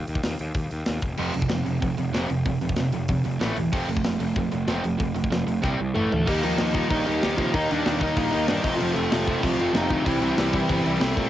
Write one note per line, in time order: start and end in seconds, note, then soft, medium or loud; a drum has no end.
0.07 0.18 D#2 medium
0.07 open hi-hat medium
0.15 kick medium
0.23 0.34 D#2 medium
0.23 snare loud
0.23 open hi-hat medium
0.39 0.50 D#2 medium
0.39 open hi-hat medium
0.55 0.66 D#2 loud
0.55 kick loud
0.55 open hi-hat medium
0.71 0.82 D#2 medium
0.71 open hi-hat medium
0.86 0.98 D#2 medium
0.86 snare loud
0.86 open hi-hat medium
1.02 1.13 F1 medium
1.02 kick loud
1.02 open hi-hat medium
1.17 1.30 F1 medium
1.17 1.33 F2 medium
1.17 1.33 C3 medium
1.17 1.34 F3 medium
1.17 crash medium
1.34 1.46 F1 medium
1.34 1.48 F2 medium
1.34 1.48 C3 medium
1.34 open hi-hat medium
1.42 kick medium
1.49 1.61 F1 loud
1.49 1.62 F2 medium
1.49 1.64 C3 medium
1.49 snare loud
1.49 open hi-hat medium
1.64 1.77 F1 medium
1.64 1.79 F2 medium
1.64 1.79 C3 medium
1.64 open hi-hat medium
1.80 1.93 F1 medium
1.80 1.96 F2 medium
1.80 1.96 C3 medium
1.80 kick loud
1.80 open hi-hat medium
1.97 2.09 F1 medium
1.97 2.12 F2 medium
1.97 2.12 C3 medium
1.97 open hi-hat medium
2.13 2.25 F1 medium
2.13 2.28 F2 medium
2.13 2.28 C3 medium
2.13 2.29 F3 medium
2.13 snare loud
2.13 open hi-hat medium
2.29 2.41 F1 medium
2.29 2.44 F2 medium
2.29 2.44 C3 medium
2.29 open hi-hat medium
2.45 2.57 F1 medium
2.45 2.60 F2 medium
2.45 2.60 C3 medium
2.45 kick loud
2.45 open hi-hat medium
2.61 2.73 F1 medium
2.61 2.75 F2 medium
2.61 2.76 C3 medium
2.61 open hi-hat medium
2.69 kick medium
2.76 2.89 F1 medium
2.76 2.91 F2 medium
2.76 2.91 C3 medium
2.76 snare loud
2.76 open hi-hat medium
2.92 3.04 F1 medium
2.92 3.07 F2 medium
2.92 3.08 C3 medium
2.92 open hi-hat medium
3.08 3.20 F1 medium
3.08 3.23 F2 medium
3.08 3.24 C3 medium
3.08 kick loud
3.08 open hi-hat medium
3.24 3.36 F1 medium
3.24 3.39 F2 medium
3.24 3.39 C3 medium
3.24 open hi-hat medium
3.39 3.52 A1 medium
3.39 3.55 A2 medium
3.39 3.56 E3 medium
3.39 3.56 A3 medium
3.39 snare loud
3.39 open hi-hat medium
3.57 3.68 E1 medium
3.57 3.71 A2 medium
3.57 3.72 E3 medium
3.57 open hi-hat medium
3.72 3.84 F1 medium
3.72 3.87 F2 medium
3.72 3.88 C3 medium
3.72 3.87 F3 medium
3.72 3.88 A3 medium
3.72 3.88 C4 loud
3.72 kick loud
3.72 crash medium
3.88 4.00 F1 medium
3.88 4.03 F2 medium
3.88 4.03 C3 medium
3.88 4.03 F3 medium
3.88 4.04 A3 medium
3.88 open hi-hat medium
3.97 kick medium
4.04 4.16 F1 medium
4.04 4.19 F2 medium
4.04 4.19 C3 medium
4.04 4.18 F3 medium
4.04 4.19 A3 medium
4.04 snare loud
4.04 open hi-hat medium
4.19 4.32 F1 medium
4.19 4.34 F2 medium
4.19 4.35 C3 medium
4.19 4.34 F3 medium
4.19 4.35 A3 medium
4.19 open hi-hat medium
4.35 4.47 F1 medium
4.35 4.50 F2 medium
4.35 4.50 C3 medium
4.35 4.51 F3 medium
4.35 4.51 A3 medium
4.35 kick loud
4.35 open hi-hat medium
4.51 4.63 F1 medium
4.51 4.66 F2 medium
4.51 4.67 C3 medium
4.51 4.67 F3 medium
4.51 4.66 A3 medium
4.51 open hi-hat medium
4.67 4.79 F1 medium
4.67 4.82 F2 medium
4.67 4.83 C3 medium
4.67 4.82 F3 medium
4.67 4.83 A3 loud
4.67 4.83 C4 medium
4.67 snare loud
4.67 open hi-hat medium
4.84 4.95 F1 medium
4.84 4.99 F2 medium
4.84 4.99 C3 medium
4.84 4.97 F3 medium
4.84 4.97 A3 medium
4.84 open hi-hat medium
4.98 5.11 F1 loud
4.98 5.14 F2 medium
4.98 5.14 C3 medium
4.98 5.13 F3 medium
4.98 5.13 A3 medium
4.98 kick loud
4.98 open hi-hat medium
5.15 5.27 F1 medium
5.15 5.30 F2 medium
5.15 5.30 C3 medium
5.15 5.29 F3 medium
5.15 5.30 A3 medium
5.15 open hi-hat medium
5.24 kick medium
5.30 5.42 F1 medium
5.30 5.46 F2 medium
5.30 5.46 C3 medium
5.30 5.45 F3 medium
5.30 5.46 A3 medium
5.30 snare loud
5.30 open hi-hat medium
5.47 5.59 F1 medium
5.47 5.62 F2 medium
5.47 5.61 C3 medium
5.47 5.62 F3 medium
5.47 5.62 A3 medium
5.47 open hi-hat medium
5.62 5.74 C2 medium
5.62 5.77 C3 medium
5.62 5.77 G3 medium
5.62 5.78 C4 loud
5.62 kick loud
5.62 snare medium
5.78 5.91 C2 medium
5.78 5.93 C3 medium
5.78 5.93 G3 medium
5.94 6.06 A1 medium
5.94 6.10 A2 medium
5.94 6.10 E3 medium
5.94 6.10 A3 medium
5.94 6.10 A3 loud
5.94 6.10 A4 loud
5.94 mid tom medium
6.12 6.23 D2 medium
6.12 6.26 A2 medium
6.12 6.26 E3 medium
6.12 6.27 A3 medium
6.12 6.29 A4 loud
6.12 floor tom medium
6.26 6.39 D#2 loud
6.26 6.45 D#3 loud
6.26 6.44 G3 loud
6.26 6.43 G3 medium
6.26 6.44 A#3 loud
6.26 6.43 D#4 loud
6.26 6.44 G4 loud
6.26 kick loud
6.26 crash loud
6.26 crash medium
6.43 6.56 D#2 medium
6.43 6.59 D#3 medium
6.43 6.73 F3 medium
6.43 6.59 G3 medium
6.43 6.60 A#3 medium
6.43 6.59 D#4 loud
6.43 6.73 F4 loud
6.43 crash medium
6.58 6.83 D#2 loud
6.58 6.75 D#3 medium
6.58 6.74 G3 medium
6.58 6.74 A#3 loud
6.58 6.74 D#4 loud
6.58 snare loud
6.58 crash medium
6.74 6.90 D#3 medium
6.74 6.90 F3 medium
6.74 6.91 G3 medium
6.74 6.92 A#3 medium
6.74 6.91 D#4 medium
6.74 6.89 F4 loud
6.74 kick medium
6.74 crash medium
6.89 7.02 A#1 medium
6.89 7.07 D#3 loud
6.89 7.07 G3 loud
6.89 7.06 A#3 medium
6.89 7.06 D#4 loud
6.89 7.05 D#4 loud
6.89 7.05 D#5 medium
6.89 kick loud
6.89 crash medium
7.06 7.19 D#2 medium
7.06 7.22 D#3 medium
7.06 7.37 G3 medium
7.06 7.22 G3 medium
7.06 7.23 A#3 medium
7.06 7.23 D#4 medium
7.06 7.37 G4 loud
7.06 crash medium
7.23 7.35 D#2 loud
7.23 7.40 D#3 loud
7.23 7.39 G3 loud
7.23 7.39 A#3 loud
7.23 7.38 D#4 loud
7.23 snare loud
7.23 crash medium
7.37 7.50 C3 medium
7.37 7.55 D#3 medium
7.37 7.53 F3 medium
7.37 7.55 G3 medium
7.37 7.56 A#3 medium
7.37 7.56 D#4 loud
7.37 7.54 F4 loud
7.37 kick medium
7.37 crash medium
7.54 7.66 D#2 medium
7.54 7.72 D#3 medium
7.54 7.72 G3 medium
7.54 7.71 A#3 loud
7.54 7.70 D#4 loud
7.54 7.71 D#4 loud
7.54 7.69 D#5 medium
7.54 kick loud
7.54 crash medium
7.71 7.82 D#2 medium
7.71 7.86 D#3 medium
7.71 7.86 G3 medium
7.71 7.87 A#3 medium
7.71 8.00 D4 loud
7.71 7.87 D#4 loud
7.71 8.01 D5 medium
7.71 crash medium
7.84 8.09 D#2 medium
7.84 8.02 D#3 loud
7.84 8.02 G3 loud
7.84 8.00 A#3 medium
7.84 snare loud
7.84 crash medium
7.88 8.01 A#3 loud
7.88 8.01 D#4 loud
8.00 8.17 D#3 medium
8.00 8.18 G3 medium
8.00 8.18 A#3 loud
8.00 8.30 D#4 loud
8.00 8.18 D#4 medium
8.00 8.31 D#5 medium
8.00 kick medium
8.00 crash medium
8.17 8.28 A#1 loud
8.17 8.33 D#3 medium
8.17 8.33 G3 medium
8.17 8.33 A#3 loud
8.17 8.33 D#4 loud
8.17 kick loud
8.17 crash loud
8.32 8.45 D#2 medium
8.32 8.50 D#3 medium
8.32 8.50 G3 medium
8.32 8.50 A#3 medium
8.32 8.47 D#4 medium
8.32 8.51 D#4 medium
8.32 8.48 D#5 medium
8.32 crash medium
8.47 8.60 G2 loud
8.47 8.62 D#3 loud
8.47 8.61 D4 loud
8.47 8.64 D5 medium
8.47 snare loud
8.47 crash loud
8.51 8.65 D#3 medium
8.51 8.65 G3 loud
8.51 8.65 A#3 loud
8.51 8.65 D#4 loud
8.61 8.76 F1 loud
8.61 8.78 F2 loud
8.61 8.78 C3 loud
8.61 8.76 D#4 medium
8.61 8.79 D#5 medium
8.61 kick loud
8.61 crash loud
8.66 8.81 F3 loud
8.66 8.81 A3 loud
8.66 8.81 C4 loud
8.66 8.80 F4 loud
8.76 8.94 F2 loud
8.76 8.95 C3 loud
8.76 8.96 F3 loud
8.76 8.94 F3 medium
8.76 8.94 F4 loud
8.80 8.92 F1 loud
8.80 8.95 F3 medium
8.80 8.96 A3 medium
8.80 8.97 C4 loud
8.80 8.97 F4 loud
8.80 crash medium
8.93 9.07 F1 medium
8.93 9.11 F2 medium
8.93 9.10 C3 loud
8.93 9.13 F3 medium
8.93 9.40 A3 medium
8.93 9.13 A3 loud
8.93 9.44 A4 loud
8.93 crash medium
8.98 9.13 C4 medium
8.98 9.12 F4 loud
9.11 9.35 F1 loud
9.11 9.25 F2 medium
9.11 9.25 C3 loud
9.11 9.27 F3 loud
9.11 9.28 A3 loud
9.11 9.29 C4 loud
9.11 9.29 F4 loud
9.11 snare loud
9.11 crash medium
9.15 9.28 F3 medium
9.26 9.42 F2 medium
9.26 9.42 C3 medium
9.26 9.44 F3 medium
9.26 9.44 A3 medium
9.26 9.44 C4 medium
9.26 9.43 F4 loud
9.26 kick medium
9.26 crash medium
9.41 9.55 C2 loud
9.41 9.58 F2 medium
9.41 9.59 C3 loud
9.41 9.74 F3 medium
9.41 9.72 F4 loud
9.41 9.60 F4 loud
9.41 kick loud
9.41 crash medium
9.45 9.59 F3 medium
9.45 9.59 A3 medium
9.45 9.60 C4 loud
9.59 9.70 F1 medium
9.59 9.75 F2 medium
9.59 9.74 C3 medium
9.59 9.77 F3 medium
9.59 9.77 A3 medium
9.59 9.76 C4 medium
9.59 9.76 F4 medium
9.59 crash medium
9.74 9.86 F1 loud
9.74 9.88 F2 medium
9.74 9.89 C3 loud
9.74 9.90 F3 medium
9.74 9.90 A3 medium
9.74 9.91 C4 loud
9.74 10.06 D#4 loud
9.74 9.91 F4 loud
9.74 10.06 D#5 medium
9.74 snare loud
9.74 crash medium
9.89 10.02 D2 loud
9.89 10.05 F2 medium
9.89 10.04 C3 medium
9.89 10.06 F3 medium
9.89 10.06 A3 medium
9.89 10.06 C4 medium
9.89 10.06 F4 medium
9.89 kick medium
9.89 crash medium
10.06 10.18 C2 loud
10.06 10.23 C3 medium
10.06 10.98 E3 medium
10.06 10.24 G3 loud
10.06 10.22 C4 loud
10.06 11.04 E4 loud
10.06 10.22 E4 loud
10.06 kick loud
10.06 crash medium
10.21 10.33 C2 medium
10.21 10.37 C3 medium
10.21 10.39 G3 medium
10.21 10.38 C4 medium
10.21 10.39 E4 medium
10.21 crash medium
10.38 10.61 C2 medium
10.38 10.55 C3 medium
10.38 10.55 G3 medium
10.38 10.54 C4 loud
10.38 10.54 E4 loud
10.38 snare loud
10.38 crash medium
10.53 10.70 C3 medium
10.53 10.72 G3 medium
10.53 10.71 C4 medium
10.53 10.71 E4 loud
10.53 kick medium
10.53 crash medium
10.69 10.81 G1 loud
10.69 10.86 C3 loud
10.69 10.87 G3 loud
10.69 10.85 C4 loud
10.69 10.85 E4 loud
10.69 kick loud
10.69 crash loud
10.86 10.98 C2 medium
10.86 11.00 C3 medium
10.86 11.01 G3 medium
10.86 11.00 C4 medium
10.86 11.01 E4 loud
10.86 crash medium
11.00 11.13 C2 medium
11.00 11.17 C3 loud
11.00 11.18 G3 medium
11.00 11.16 A3 medium
11.00 11.17 C4 loud
11.00 11.16 E4 loud
11.00 11.15 A4 loud
11.00 snare loud
11.00 crash medium
11.16 11.29 A#2 loud
11.16 11.29 C3 medium
11.16 11.29 G3 medium
11.16 11.29 A3 medium
11.16 11.29 C4 loud
11.16 11.29 E4 medium
11.16 11.29 A4 loud
11.16 kick medium
11.16 crash medium